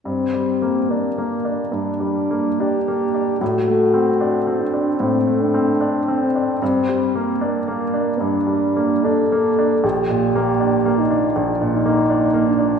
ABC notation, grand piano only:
X:1
M:4/4
L:1/8
Q:1/4=76
K:Gm
V:1 name="Grand piano"
(3G,, G, B, (3D B, D (3G,, G, B, (3D B, D | (3A,, A, C (3D C D (3A,, A, C (3D C D | (3G,, G, B, (3D B, D (3G,, G, B, (3D B, D | (3B,,, B,, B, (3D B, D (3B,,, B,, B, (3D B, D |]